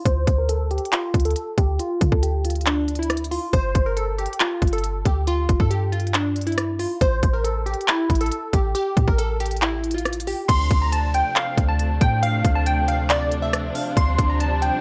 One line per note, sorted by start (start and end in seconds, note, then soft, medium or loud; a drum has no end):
0.05 0.26 D2 loud
0.05 0.36 C5 loud
0.05 kick loud
0.05 closed hi-hat medium
0.27 0.79 D2 loud
0.27 kick medium
0.27 closed hi-hat medium
0.38 0.48 A#4 medium
0.49 0.70 A4 medium
0.49 closed hi-hat medium
0.71 0.91 G4 medium
0.71 closed hi-hat soft
0.78 closed hi-hat medium
0.85 closed hi-hat medium
0.92 1.23 F4 medium
0.92 clap loud
0.92 closed hi-hat medium
1.14 1.35 D2 loud
1.14 kick loud
1.14 closed hi-hat medium
1.20 closed hi-hat medium
1.25 1.56 A4 medium
1.25 closed hi-hat medium
1.31 closed hi-hat medium
1.36 closed hi-hat medium
1.58 1.79 D2 loud
1.58 1.78 G4 medium
1.58 kick medium
1.58 closed hi-hat medium
1.79 2.10 F4 loud
1.79 closed hi-hat medium
2.01 2.12 D3 loud
2.01 kick medium
2.01 closed hi-hat medium
2.12 3.38 D2 loud
2.12 2.22 A4 medium
2.12 kick medium
2.23 2.43 G4 medium
2.23 closed hi-hat medium
2.45 2.65 F4 medium
2.45 closed hi-hat medium
2.50 closed hi-hat medium
2.55 closed hi-hat medium
2.61 closed hi-hat soft
2.66 2.97 D4 medium
2.66 clap loud
2.66 closed hi-hat medium
2.88 closed hi-hat medium
2.95 3.30 E4 medium
2.95 closed hi-hat medium
3.03 closed hi-hat medium
3.10 cross-stick loud
3.10 closed hi-hat medium
3.17 closed hi-hat medium
3.24 closed hi-hat medium
3.31 3.52 F4 medium
3.31 open hi-hat medium
3.53 3.74 G1 loud
3.53 3.84 C5 loud
3.53 kick loud
3.53 closed hi-hat medium
3.75 4.27 G1 loud
3.75 kick medium
3.75 closed hi-hat medium
3.86 3.96 A#4 medium
3.97 4.17 A4 medium
3.97 closed hi-hat medium
4.18 4.39 G4 medium
4.18 closed hi-hat soft
4.26 closed hi-hat medium
4.33 closed hi-hat medium
4.40 4.71 F4 loud
4.40 clap loud
4.40 closed hi-hat medium
4.62 5.04 G1 loud
4.62 kick medium
4.62 closed hi-hat medium
4.67 closed hi-hat medium
4.73 5.04 A4 medium
4.73 closed hi-hat medium
4.78 closed hi-hat medium
4.84 closed hi-hat medium
5.05 5.47 D2 loud
5.05 5.26 G4 medium
5.05 kick medium
5.05 closed hi-hat medium
5.27 5.58 F4 loud
5.27 closed hi-hat medium
5.49 5.59 G1 loud
5.49 kick medium
5.49 closed hi-hat medium
5.60 6.86 G2 loud
5.60 5.70 A4 medium
5.60 kick medium
5.71 5.91 G4 medium
5.71 closed hi-hat medium
5.92 6.13 F4 medium
5.92 closed hi-hat soft
6.00 closed hi-hat medium
6.07 closed hi-hat medium
6.14 6.45 D4 medium
6.14 clap loud
6.14 closed hi-hat medium
6.36 closed hi-hat medium
6.41 closed hi-hat medium
6.47 6.77 E4 medium
6.47 closed hi-hat medium
6.52 closed hi-hat medium
6.58 cross-stick loud
6.58 closed hi-hat medium
6.79 7.00 F4 medium
6.79 open hi-hat medium
7.01 7.22 A1 loud
7.01 7.32 C5 loud
7.01 kick loud
7.01 closed hi-hat medium
7.23 7.75 A1 loud
7.23 kick medium
7.23 closed hi-hat medium
7.33 7.44 A#4 medium
7.44 7.65 A4 medium
7.44 closed hi-hat medium
7.66 7.87 G4 medium
7.66 closed hi-hat soft
7.74 closed hi-hat medium
7.81 closed hi-hat medium
7.88 8.19 E4 loud
7.88 clap loud
7.88 closed hi-hat medium
8.10 8.31 A1 loud
8.10 kick medium
8.10 closed hi-hat medium
8.15 closed hi-hat medium
8.21 8.51 A4 medium
8.21 closed hi-hat medium
8.26 closed hi-hat medium
8.32 closed hi-hat medium
8.53 8.74 A1 loud
8.53 8.74 G4 medium
8.53 kick medium
8.53 closed hi-hat medium
8.75 9.06 G4 loud
8.75 closed hi-hat medium
8.97 9.07 A2 loud
8.97 kick medium
8.97 closed hi-hat medium
9.08 10.34 A1 loud
9.08 9.18 A#4 medium
9.08 kick medium
9.18 9.39 A4 medium
9.18 closed hi-hat medium
9.40 9.61 G4 medium
9.40 closed hi-hat medium
9.46 closed hi-hat medium
9.51 closed hi-hat medium
9.57 closed hi-hat soft
9.62 9.93 E4 medium
9.62 clap loud
9.62 closed hi-hat medium
9.84 closed hi-hat medium
9.91 10.25 F4 medium
9.91 closed hi-hat medium
9.98 closed hi-hat medium
10.05 cross-stick medium
10.05 closed hi-hat medium
10.13 closed hi-hat medium
10.20 closed hi-hat medium
10.27 10.48 G4 medium
10.27 open hi-hat medium
10.48 10.70 D2 loud
10.48 14.81 C3 medium
10.48 14.81 F3 medium
10.48 13.93 A3 medium
10.48 14.81 D4 medium
10.48 10.79 C6 loud
10.48 kick loud
10.48 closed hi-hat medium
10.48 crash loud
10.71 11.23 D2 loud
10.71 kick medium
10.71 closed hi-hat medium
10.82 10.92 A#5 medium
10.92 11.13 A5 medium
10.92 closed hi-hat medium
11.14 11.35 G5 medium
11.14 closed hi-hat medium
11.36 11.67 F5 medium
11.36 clap loud
11.36 closed hi-hat medium
11.58 11.99 D2 loud
11.58 kick medium
11.58 closed hi-hat medium
11.69 11.99 A5 medium
11.79 closed hi-hat medium
12.01 12.43 A2 loud
12.01 12.22 G5 medium
12.01 kick loud
12.01 closed hi-hat medium
12.23 12.53 F5 loud
12.23 closed hi-hat medium
12.45 13.71 D2 loud
12.45 kick medium
12.45 closed hi-hat medium
12.55 12.66 A5 medium
12.66 12.87 G5 medium
12.66 closed hi-hat medium
12.88 13.09 F5 medium
12.88 closed hi-hat medium
13.10 13.41 D5 medium
13.10 clap loud
13.10 closed hi-hat medium
13.32 closed hi-hat medium
13.42 13.73 E5 medium
13.53 cross-stick loud
13.53 closed hi-hat medium
13.75 13.96 F5 medium
13.75 open hi-hat medium
13.97 14.18 D2 loud
13.97 14.81 G3 medium
13.97 14.27 C6 loud
13.97 kick loud
13.97 closed hi-hat medium
14.19 14.71 D2 loud
14.19 kick medium
14.19 closed hi-hat medium
14.29 14.40 A#5 medium
14.40 14.61 A5 medium
14.40 closed hi-hat medium
14.62 14.81 G5 medium
14.62 closed hi-hat medium